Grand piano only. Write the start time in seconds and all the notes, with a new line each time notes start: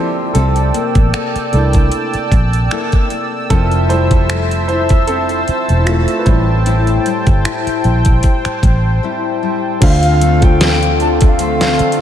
Already playing: F3 A#3 C4 E4 G4 A4
0.33 C4 A4
1.53 A3 A#3 D4 E4
3.50 C4 A4
3.89 G3 A3 E4 C5
4.68 E4 C5
5.07 C4 A4
5.79 E4
5.86 A3 F4
6.19 B4
6.25 G3 C4 E4 C5
9.81 D3 A3 F4 C5 F5
10.41 D3 A3 F4 C5 G5